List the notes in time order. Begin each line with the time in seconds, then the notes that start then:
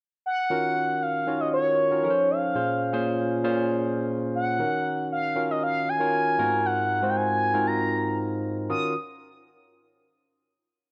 0.26 F#5
0.50 D#3 C#4 F4 F#4 A#4
1.02 F5
1.27 D#3 C#4 F4 F#4 C#5
1.40 D#5
1.54 C#5
1.91 D#3 C#4 F4 F#4 A#4
2.03 F3 C#4 D#4 A4 A#4
2.10 C5
2.30 F5
2.55 A#2 C#4 F4 G#4 C5
2.93 A#2 C#4 F4 G#4 C5
3.44 A#2 C#4 F4 G#4 C5
4.35 F#5
4.59 D#3 C#4 D#4 F#4 A#4
5.12 F5
5.35 D#3 C#4 F4 F#4 A#4
5.51 D#5
5.64 F5
5.89 G#5
6.00 D#3 C#4 F4 F#4 A#4
6.38 G#2 B3 D#4 F4 F#4 A#4
6.45 C4
6.66 F#5
7.02 G#2 C4 D#4 F4 F#4 C5
7.10 G5
7.16 G#5
7.53 G#2 C4 D#4 F4 F#4 A#4
7.67 A#5
8.70 D#3 C#4 F4 F#4 A#4 D#6